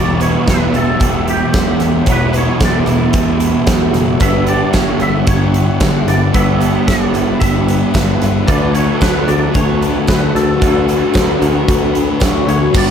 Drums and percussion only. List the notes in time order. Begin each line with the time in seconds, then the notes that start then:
0.21 closed hi-hat
0.48 kick, snare, closed hi-hat
0.75 closed hi-hat
1.01 kick, closed hi-hat
1.28 closed hi-hat
1.54 kick, snare, closed hi-hat
1.80 snare, closed hi-hat
2.06 kick, closed hi-hat
2.34 closed hi-hat
2.60 kick, snare, closed hi-hat
2.87 closed hi-hat
3.13 kick, closed hi-hat
3.40 closed hi-hat
3.67 kick, snare, closed hi-hat
3.94 snare, closed hi-hat
4.20 kick, closed hi-hat
4.47 closed hi-hat
4.73 kick, snare, closed hi-hat, tambourine
5.00 closed hi-hat
5.27 kick, closed hi-hat
5.54 closed hi-hat
5.80 kick, snare, closed hi-hat, tambourine
6.08 snare, closed hi-hat
6.34 kick, closed hi-hat
6.61 closed hi-hat
6.88 kick, snare, closed hi-hat, tambourine
7.15 closed hi-hat
7.42 kick, closed hi-hat
7.68 closed hi-hat
7.94 kick, snare, closed hi-hat, tambourine
8.22 snare, closed hi-hat
8.48 kick, closed hi-hat
8.75 closed hi-hat
9.01 kick, snare, closed hi-hat, tambourine
9.29 closed hi-hat
9.55 kick, closed hi-hat
9.82 closed hi-hat
10.07 kick, snare, closed hi-hat, tambourine
10.36 snare, closed hi-hat
10.62 kick, closed hi-hat
10.89 closed hi-hat
11.14 kick, snare, closed hi-hat, tambourine
11.42 closed hi-hat
11.68 kick, closed hi-hat
11.95 closed hi-hat
12.20 kick, snare, closed hi-hat, tambourine
12.49 closed hi-hat
12.74 kick, crash, tambourine